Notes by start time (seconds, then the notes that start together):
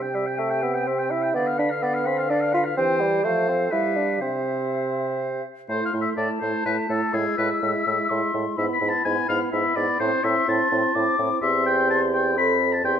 Already playing: C3 G4 G5
0.02 G5
0.14 G3 E5
0.26 G5
0.39 A3 E5
0.50 G5
0.63 B3 E5
0.75 G5
0.87 C4 E5
0.99 G5
1.10 E4 E5
1.23 G5
1.35 D3 B3 B4 D5 F5
1.47 F5
1.59 D4 B5
1.70 F5
1.82 B3 D5
1.94 F5
2.06 C4 B5
2.18 F5
2.30 D4 D5
2.41 F5
2.53 F4 B5
2.65 F5
2.77 E3 C4 G4 C5 G5
3.01 G3
3.24 F3 A3 A4 C5 F5
3.48 C4
3.72 G3 E4 G4 B4 F5
3.96 D4
4.21 C3 C4 G4 C5 E5
5.69 A2 A3 E4 C5 C6
5.86 F5
5.93 A2 A3 E4
6.01 E5
6.16 A2 A3 E4 D5 A5
6.41 A2 A3 E4 C5
6.66 A2 A3 E4 B4
6.89 A2 A3 E4 A4
7.13 A2 G#3 E4 G#4 E6
7.38 A2 G#3 E4 B4
7.62 A2 G#3 E4 E5
7.87 A2 G#3 E4
8.10 A2 G#3 E4 C6
8.34 A2 G#3 E4
8.57 G#2 B3 E4 E5 B5
8.73 B5
8.81 G#2 B3 E4
8.89 A5
9.05 G#2 B3 E4 G#5
9.29 G#2 B3 E4 F5
9.52 G#2 B3 E4 E5 B5
9.76 G#2 B3 E4 D5
10.00 A2 C4 E4 C5 C6
10.23 A2 C4 E4 E5
10.48 A2 C4 E4 A5
10.71 A2 C4 E4
10.95 A2 C4 E4 D6
11.19 A2 C4 E4
11.42 E2 C4 G4 E5 C6
11.66 G5
11.90 A5
12.14 G5
12.36 F2 C4 A4 B5
12.73 A5
12.84 E2 C4 G4 G5 C6